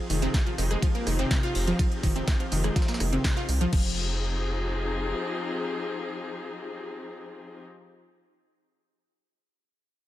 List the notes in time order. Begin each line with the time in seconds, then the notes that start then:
Already playing: F3 C4 D#4 G4 G#4
0.10 F1 D#3 D#4, open hi-hat, tambourine
0.22 C3 C4, closed hi-hat
0.34 kick, snare, closed hi-hat, ride, tambourine
0.46 F3 F4, closed hi-hat
0.58 F1 D#3 D#4, open hi-hat, tambourine
0.71 G#3 G#4, cross-stick, closed hi-hat
0.82 F3 F4, kick, closed hi-hat, ride, tambourine
0.95 A#3 A#4, closed hi-hat
1.07 F1 D#3 D#4, cross-stick, open hi-hat, tambourine
1.19 C3 C4, snare, closed hi-hat
1.31 C3 C4, kick, snare, closed hi-hat, ride, tambourine
1.43 F4 F5, closed hi-hat
1.55 F1, open hi-hat
1.67 F3 F4, closed hi-hat
1.79 F3 F4, kick, closed hi-hat, ride, tambourine
1.92 closed hi-hat
2.03 F1 D#3 D#4, kick, snare, open hi-hat, tambourine
2.16 C3 C4, closed hi-hat
2.28 kick, snare, closed hi-hat, ride, tambourine
2.40 F3 F4, closed hi-hat
2.52 F1 D#3 D#4, open hi-hat, tambourine
2.64 G#3 G#4, cross-stick, closed hi-hat
2.76 F3 F4, kick, snare, closed hi-hat, ride, tambourine
2.82 snare, tambourine
2.88 A#3 A#4, snare, closed hi-hat, tambourine
2.94 snare, tambourine
3.00 F1 D#3 D#4, cross-stick, open hi-hat, tambourine
3.12 C3 C4, closed hi-hat
3.24 C3 C4, kick, snare, closed hi-hat, ride, tambourine
3.37 F4 F5, snare, closed hi-hat
3.49 C2, open hi-hat, tambourine
3.61 F3 F4, closed hi-hat
3.73 F1 F3 C4 D#4 G4 G#4, kick, crash